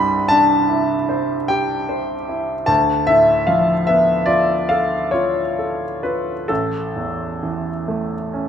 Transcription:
0, 0, Header, 1, 2, 480
1, 0, Start_track
1, 0, Tempo, 795756
1, 1622, Time_signature, 9, 3, 24, 8
1, 2585, Tempo, 843882
1, 3065, Tempo, 911854
1, 4831, End_track
2, 0, Start_track
2, 0, Title_t, "Grand piano"
2, 0, Program_c, 0, 0
2, 0, Control_c, 0, 64, 127
2, 0, Note_on_c, 0, 36, 53
2, 0, Note_on_c, 0, 43, 38
2, 0, Note_on_c, 0, 55, 41
2, 0, Note_on_c, 0, 83, 84
2, 0, Note_on_c, 0, 84, 96
2, 91, Note_off_c, 0, 43, 0
2, 172, Note_on_c, 0, 81, 92
2, 179, Note_off_c, 0, 83, 0
2, 186, Note_on_c, 0, 62, 47
2, 330, Note_off_c, 0, 55, 0
2, 418, Note_on_c, 0, 64, 39
2, 571, Note_off_c, 0, 62, 0
2, 657, Note_on_c, 0, 72, 37
2, 808, Note_off_c, 0, 64, 0
2, 895, Note_on_c, 0, 79, 78
2, 901, Note_off_c, 0, 81, 0
2, 904, Note_on_c, 0, 67, 40
2, 1046, Note_off_c, 0, 72, 0
2, 1140, Note_on_c, 0, 72, 35
2, 1285, Note_off_c, 0, 67, 0
2, 1381, Note_on_c, 0, 64, 35
2, 1522, Note_off_c, 0, 72, 0
2, 1598, Note_off_c, 0, 36, 0
2, 1606, Note_on_c, 0, 81, 78
2, 1613, Note_on_c, 0, 38, 48
2, 1615, Note_off_c, 0, 79, 0
2, 1621, Note_off_c, 0, 64, 0
2, 1632, Control_c, 0, 64, 0
2, 1633, Note_off_c, 0, 84, 0
2, 1735, Control_c, 0, 64, 127
2, 1850, Note_on_c, 0, 76, 87
2, 1856, Note_off_c, 0, 81, 0
2, 1866, Note_on_c, 0, 45, 39
2, 2091, Note_on_c, 0, 77, 65
2, 2096, Note_off_c, 0, 76, 0
2, 2097, Note_on_c, 0, 53, 39
2, 2246, Note_off_c, 0, 45, 0
2, 2333, Note_on_c, 0, 76, 76
2, 2335, Note_off_c, 0, 77, 0
2, 2343, Note_on_c, 0, 59, 40
2, 2483, Note_off_c, 0, 53, 0
2, 2568, Note_on_c, 0, 74, 71
2, 2572, Note_on_c, 0, 65, 34
2, 2581, Note_off_c, 0, 76, 0
2, 2726, Note_off_c, 0, 59, 0
2, 2813, Note_off_c, 0, 74, 0
2, 2814, Note_on_c, 0, 77, 66
2, 2825, Note_on_c, 0, 69, 31
2, 2960, Note_off_c, 0, 65, 0
2, 3055, Note_on_c, 0, 73, 62
2, 3061, Note_off_c, 0, 77, 0
2, 3069, Note_on_c, 0, 65, 35
2, 3205, Note_off_c, 0, 69, 0
2, 3306, Note_on_c, 0, 69, 26
2, 3442, Note_off_c, 0, 65, 0
2, 3533, Note_off_c, 0, 73, 0
2, 3540, Note_on_c, 0, 71, 53
2, 3543, Note_on_c, 0, 65, 29
2, 3688, Note_off_c, 0, 69, 0
2, 3759, Note_off_c, 0, 38, 0
2, 3777, Note_on_c, 0, 69, 59
2, 3783, Note_on_c, 0, 33, 40
2, 3785, Note_off_c, 0, 71, 0
2, 3787, Note_off_c, 0, 65, 0
2, 3794, Control_c, 0, 64, 0
2, 3889, Control_c, 0, 64, 127
2, 4029, Note_on_c, 0, 40, 30
2, 4276, Note_on_c, 0, 52, 30
2, 4413, Note_off_c, 0, 40, 0
2, 4513, Note_on_c, 0, 57, 35
2, 4653, Note_off_c, 0, 52, 0
2, 4752, Note_on_c, 0, 61, 31
2, 4831, Note_off_c, 0, 33, 0
2, 4831, Note_off_c, 0, 57, 0
2, 4831, Note_off_c, 0, 61, 0
2, 4831, Note_off_c, 0, 69, 0
2, 4831, End_track
0, 0, End_of_file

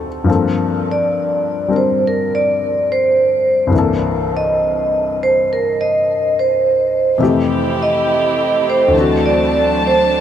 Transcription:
0, 0, Header, 1, 4, 480
1, 0, Start_track
1, 0, Tempo, 867052
1, 152, Time_signature, 4, 2, 24, 8
1, 5650, End_track
2, 0, Start_track
2, 0, Title_t, "Vibraphone"
2, 0, Program_c, 0, 11
2, 506, Note_on_c, 0, 74, 66
2, 944, Note_off_c, 0, 74, 0
2, 976, Note_on_c, 0, 72, 63
2, 1117, Note_off_c, 0, 72, 0
2, 1148, Note_on_c, 0, 70, 61
2, 1283, Note_off_c, 0, 70, 0
2, 1301, Note_on_c, 0, 74, 69
2, 1582, Note_off_c, 0, 74, 0
2, 1616, Note_on_c, 0, 72, 68
2, 2058, Note_off_c, 0, 72, 0
2, 2417, Note_on_c, 0, 75, 73
2, 2859, Note_off_c, 0, 75, 0
2, 2896, Note_on_c, 0, 72, 66
2, 3036, Note_off_c, 0, 72, 0
2, 3060, Note_on_c, 0, 70, 64
2, 3199, Note_off_c, 0, 70, 0
2, 3215, Note_on_c, 0, 75, 75
2, 3500, Note_off_c, 0, 75, 0
2, 3539, Note_on_c, 0, 72, 56
2, 3982, Note_off_c, 0, 72, 0
2, 4332, Note_on_c, 0, 75, 77
2, 4779, Note_off_c, 0, 75, 0
2, 4814, Note_on_c, 0, 72, 63
2, 4958, Note_off_c, 0, 72, 0
2, 4970, Note_on_c, 0, 69, 45
2, 5116, Note_off_c, 0, 69, 0
2, 5124, Note_on_c, 0, 74, 70
2, 5416, Note_off_c, 0, 74, 0
2, 5465, Note_on_c, 0, 72, 65
2, 5650, Note_off_c, 0, 72, 0
2, 5650, End_track
3, 0, Start_track
3, 0, Title_t, "String section"
3, 0, Program_c, 1, 48
3, 3981, Note_on_c, 1, 57, 54
3, 3983, Note_on_c, 1, 67, 64
3, 3984, Note_on_c, 1, 64, 53
3, 3988, Note_on_c, 1, 60, 55
3, 4938, Note_off_c, 1, 64, 0
3, 4938, Note_off_c, 1, 67, 0
3, 4954, Note_on_c, 1, 54, 60
3, 4957, Note_on_c, 1, 81, 68
3, 4960, Note_on_c, 1, 62, 56
3, 5650, Note_off_c, 1, 54, 0
3, 5650, Note_off_c, 1, 57, 0
3, 5650, Note_off_c, 1, 60, 0
3, 5650, Note_off_c, 1, 62, 0
3, 5650, Note_off_c, 1, 81, 0
3, 5650, End_track
4, 0, Start_track
4, 0, Title_t, "Grand piano"
4, 0, Program_c, 2, 0
4, 0, Control_c, 2, 64, 127
4, 0, Note_on_c, 2, 38, 43
4, 0, Note_on_c, 2, 50, 37
4, 0, Note_on_c, 2, 60, 37
4, 0, Note_on_c, 2, 63, 39
4, 0, Note_on_c, 2, 66, 47
4, 0, Note_on_c, 2, 69, 43
4, 0, Note_on_c, 2, 72, 37
4, 133, Note_on_c, 2, 43, 49
4, 140, Note_off_c, 2, 38, 0
4, 140, Note_on_c, 2, 53, 44
4, 147, Note_off_c, 2, 50, 0
4, 149, Note_on_c, 2, 58, 44
4, 150, Note_off_c, 2, 60, 0
4, 156, Note_off_c, 2, 69, 0
4, 158, Note_on_c, 2, 60, 44
4, 160, Control_c, 2, 64, 0
4, 162, Note_off_c, 2, 63, 0
4, 162, Note_off_c, 2, 72, 0
4, 164, Note_on_c, 2, 69, 53
4, 169, Note_off_c, 2, 66, 0
4, 252, Control_c, 2, 64, 127
4, 928, Note_off_c, 2, 60, 0
4, 932, Note_on_c, 2, 55, 38
4, 936, Note_on_c, 2, 60, 38
4, 940, Note_on_c, 2, 62, 36
4, 946, Note_on_c, 2, 70, 42
4, 2031, Note_on_c, 2, 36, 52
4, 2037, Note_off_c, 2, 43, 0
4, 2046, Note_on_c, 2, 43, 47
4, 2057, Note_on_c, 2, 50, 47
4, 2059, Note_off_c, 2, 55, 0
4, 2060, Note_off_c, 2, 53, 0
4, 2061, Note_off_c, 2, 60, 0
4, 2063, Note_off_c, 2, 62, 0
4, 2064, Note_off_c, 2, 58, 0
4, 2066, Note_off_c, 2, 70, 0
4, 2069, Note_on_c, 2, 52, 48
4, 2071, Note_off_c, 2, 69, 0
4, 2073, Control_c, 2, 64, 0
4, 2084, Note_on_c, 2, 58, 48
4, 2095, Note_on_c, 2, 69, 58
4, 2164, Control_c, 2, 64, 127
4, 3971, Note_off_c, 2, 36, 0
4, 3974, Note_on_c, 2, 41, 53
4, 3976, Note_off_c, 2, 52, 0
4, 3978, Note_off_c, 2, 43, 0
4, 3979, Note_on_c, 2, 48, 49
4, 3983, Note_off_c, 2, 50, 0
4, 3985, Note_on_c, 2, 52, 50
4, 3993, Note_on_c, 2, 57, 49
4, 3994, Control_c, 2, 64, 0
4, 3997, Note_off_c, 2, 58, 0
4, 4001, Note_on_c, 2, 67, 58
4, 4003, Note_off_c, 2, 69, 0
4, 4086, Control_c, 2, 64, 127
4, 4915, Note_on_c, 2, 38, 52
4, 4932, Note_on_c, 2, 50, 43
4, 4938, Note_off_c, 2, 52, 0
4, 4943, Note_off_c, 2, 41, 0
4, 4945, Note_off_c, 2, 48, 0
4, 4946, Note_on_c, 2, 52, 44
4, 4952, Note_off_c, 2, 57, 0
4, 4956, Note_off_c, 2, 67, 0
4, 4957, Control_c, 2, 64, 0
4, 4962, Note_on_c, 2, 60, 43
4, 4978, Note_on_c, 2, 66, 56
4, 5058, Control_c, 2, 64, 127
4, 5650, Note_off_c, 2, 38, 0
4, 5650, Note_off_c, 2, 50, 0
4, 5650, Note_off_c, 2, 52, 0
4, 5650, Note_off_c, 2, 60, 0
4, 5650, Note_off_c, 2, 66, 0
4, 5650, End_track
0, 0, End_of_file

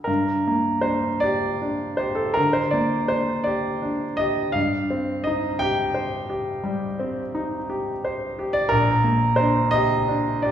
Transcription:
0, 0, Header, 1, 2, 480
1, 0, Start_track
1, 0, Key_signature, -2, "minor"
1, 0, Tempo, 766284
1, 48, Time_signature, 12, 3, 24, 8
1, 1486, Tempo, 724638
1, 3406, Tempo, 695249
1, 5326, Tempo, 681818
1, 7061, End_track
2, 0, Start_track
2, 0, Title_t, "Grand piano"
2, 0, Program_c, 0, 0
2, 0, Control_c, 0, 64, 127
2, 26, Note_on_c, 0, 70, 64
2, 45, Note_on_c, 0, 43, 51
2, 60, Control_c, 0, 64, 0
2, 156, Control_c, 0, 64, 127
2, 297, Note_on_c, 0, 58, 43
2, 510, Note_on_c, 0, 72, 66
2, 525, Note_on_c, 0, 62, 40
2, 527, Note_off_c, 0, 70, 0
2, 680, Note_off_c, 0, 58, 0
2, 753, Note_on_c, 0, 74, 79
2, 761, Note_off_c, 0, 72, 0
2, 775, Note_on_c, 0, 67, 49
2, 911, Note_off_c, 0, 62, 0
2, 1013, Note_on_c, 0, 62, 43
2, 1155, Note_off_c, 0, 67, 0
2, 1234, Note_on_c, 0, 72, 64
2, 1238, Note_off_c, 0, 74, 0
2, 1250, Note_on_c, 0, 67, 44
2, 1348, Note_on_c, 0, 69, 60
2, 1359, Note_off_c, 0, 72, 0
2, 1391, Note_off_c, 0, 62, 0
2, 1459, Note_off_c, 0, 43, 0
2, 1464, Note_on_c, 0, 70, 85
2, 1476, Note_off_c, 0, 69, 0
2, 1485, Note_on_c, 0, 50, 50
2, 1499, Control_c, 0, 64, 0
2, 1591, Note_on_c, 0, 72, 69
2, 1599, Note_off_c, 0, 70, 0
2, 1629, Control_c, 0, 64, 127
2, 1636, Note_off_c, 0, 67, 0
2, 1707, Note_on_c, 0, 74, 67
2, 1724, Note_off_c, 0, 72, 0
2, 1725, Note_on_c, 0, 58, 45
2, 1878, Note_off_c, 0, 50, 0
2, 1957, Note_on_c, 0, 72, 68
2, 1960, Note_off_c, 0, 74, 0
2, 1979, Note_on_c, 0, 62, 41
2, 2110, Note_off_c, 0, 58, 0
2, 2191, Note_on_c, 0, 74, 70
2, 2200, Note_off_c, 0, 72, 0
2, 2211, Note_on_c, 0, 67, 46
2, 2353, Note_off_c, 0, 62, 0
2, 2445, Note_on_c, 0, 62, 43
2, 2593, Note_off_c, 0, 67, 0
2, 2675, Note_on_c, 0, 75, 83
2, 2680, Note_off_c, 0, 74, 0
2, 2693, Note_on_c, 0, 67, 46
2, 2833, Note_off_c, 0, 62, 0
2, 2911, Note_on_c, 0, 77, 81
2, 2923, Note_off_c, 0, 75, 0
2, 2931, Note_off_c, 0, 67, 0
2, 2932, Note_on_c, 0, 43, 58
2, 2941, Control_c, 0, 64, 0
2, 3033, Control_c, 0, 64, 127
2, 3163, Note_on_c, 0, 60, 49
2, 3384, Note_on_c, 0, 75, 76
2, 3396, Note_off_c, 0, 77, 0
2, 3405, Note_on_c, 0, 63, 43
2, 3548, Note_off_c, 0, 60, 0
2, 3628, Note_on_c, 0, 79, 93
2, 3635, Note_off_c, 0, 75, 0
2, 3647, Note_on_c, 0, 67, 58
2, 3789, Note_off_c, 0, 63, 0
2, 3870, Note_on_c, 0, 72, 47
2, 4022, Note_off_c, 0, 67, 0
2, 4114, Note_on_c, 0, 67, 51
2, 4252, Note_off_c, 0, 72, 0
2, 4326, Note_off_c, 0, 43, 0
2, 4347, Note_on_c, 0, 55, 53
2, 4495, Note_off_c, 0, 67, 0
2, 4596, Note_on_c, 0, 60, 52
2, 4737, Note_off_c, 0, 55, 0
2, 4839, Note_on_c, 0, 63, 56
2, 4985, Note_off_c, 0, 60, 0
2, 5079, Note_on_c, 0, 67, 48
2, 5229, Note_off_c, 0, 63, 0
2, 5321, Note_on_c, 0, 72, 52
2, 5470, Note_off_c, 0, 67, 0
2, 5563, Note_on_c, 0, 67, 52
2, 5664, Note_on_c, 0, 74, 81
2, 5673, Note_off_c, 0, 79, 0
2, 5704, Note_off_c, 0, 72, 0
2, 5774, Note_on_c, 0, 70, 90
2, 5789, Note_off_c, 0, 74, 0
2, 5790, Note_on_c, 0, 34, 61
2, 5797, Note_off_c, 0, 67, 0
2, 5810, Control_c, 0, 64, 0
2, 5910, Control_c, 0, 64, 127
2, 6022, Note_on_c, 0, 58, 51
2, 6248, Note_on_c, 0, 72, 76
2, 6259, Note_off_c, 0, 70, 0
2, 6273, Note_on_c, 0, 62, 55
2, 6414, Note_off_c, 0, 58, 0
2, 6492, Note_on_c, 0, 75, 97
2, 6504, Note_off_c, 0, 72, 0
2, 6513, Note_on_c, 0, 67, 57
2, 6662, Note_off_c, 0, 62, 0
2, 6756, Note_on_c, 0, 62, 51
2, 6904, Note_off_c, 0, 67, 0
2, 6992, Note_off_c, 0, 75, 0
2, 6995, Note_on_c, 0, 74, 66
2, 7014, Note_on_c, 0, 67, 48
2, 7061, Note_off_c, 0, 34, 0
2, 7061, Note_off_c, 0, 62, 0
2, 7061, Note_off_c, 0, 67, 0
2, 7061, Note_off_c, 0, 74, 0
2, 7061, End_track
0, 0, End_of_file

